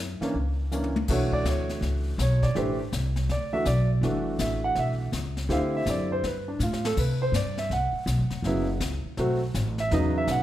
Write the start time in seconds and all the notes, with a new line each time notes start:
Already playing: F#2
0.21 E3 A#3 C#4 D4, muted upright bass stroke, snare
0.34 C#2, brush sweep
0.71 E3 A#3 C#4 D4, hi-hat pedal, high tom
0.84 high tom
0.96 high tom
1.08 B1 E3 A3 D4 F#4, brush sweep, kick, snare, crash
1.12 C#5
1.32 D5, kick
1.44 D2, snare, hi-hat pedal
1.49 C#5
1.69 snare
1.81 C#2, brush sweep, snare
2.18 B1 C#5, snare, hi-hat pedal
2.42 D5, kick, snare
2.55 A1 E3 A3 D4 G4 C5, brush sweep, snare
2.92 C2, snare, hi-hat pedal
3.16 snare
3.29 D2 D5, brush sweep, snare
3.53 E3 A3 D4 F#4 E5
3.65 B1 D5, snare, hi-hat pedal
4.01 G1 E3 A3 D4 F#4, brush sweep, snare
4.39 A1 E5, snare, hi-hat pedal
4.64 F#5
4.75 B1 E5, brush sweep, snare
5.12 C#2, snare, hi-hat pedal
5.37 snare
5.49 D2 D3 C4 E4 G4 F5, brush sweep, snare
5.77 E5
5.86 F#2, snare, hi-hat pedal
5.90 D5
6.12 C5
6.23 G2 B4, brush sweep, snare
6.48 D4
6.59 A2 F4, snare, hi-hat pedal
6.73 snare
6.85 A4, snare
6.97 C3 B4, brush sweep, kick, snare, crash
7.22 C5
7.32 G2 D5, snare, hi-hat pedal
7.57 E5, snare
7.70 C2 F#5, brush sweep, snare
7.93 muted upright bass stroke
8.06 B1, snare, hi-hat pedal
8.19 G1
8.30 E1, snare
8.42 F#1 C#3 F#3 B3 E4, brush sweep, snare
8.80 C#2, snare, hi-hat pedal
9.04 muted upright bass stroke
9.17 B1 F#3 A3 C4 F#4, brush sweep, snare
9.54 A1, snare, hi-hat pedal
9.78 E5, snare
9.91 E2 C#3 F#3 B3 D#4 D#5, brush sweep, snare
10.18 E5
10.27 B1 F#5, snare, hi-hat pedal